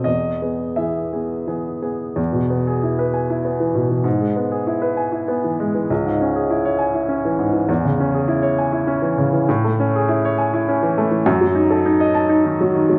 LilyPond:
<<
  \new Staff \with { instrumentName = "Grand piano" } { \time 3/4 \key e \major \tempo 4 = 99 dis''4 e''4 r4 | r2. | r2. | r2. |
r2. | \key a \lydian r2. | r2. | }
  \new Staff \with { instrumentName = "Grand piano" } { \time 3/4 \key e \major e,8 <b gis'>8 <e b gis'>8 <b gis'>8 <e b gis'>8 <b gis'>8 | e,16 b,16 b16 gis'16 e'16 b'16 gis''16 e'16 b16 e16 b,16 e16 | gis,16 gis16 b16 gis'16 e'16 b'16 gis''16 e'16 b16 e16 gis16 e16 | cis,16 gis,16 cis'16 gis'16 e'16 cis''16 gis''16 e'16 cis'16 e16 gis,16 e16 |
e,16 cis16 cis'16 gis'16 e'16 cis''16 gis''16 e'16 cis'16 e16 cis16 e16 | \key a \lydian a,16 a16 cis'16 gis'16 e'16 cis''16 gis''16 e'16 cis'16 e16 a16 e16 | fis,16 fis16 dis'16 a'16 dis'16 dis''16 a''16 dis'16 dis16 fis16 dis16 fis16 | }
>>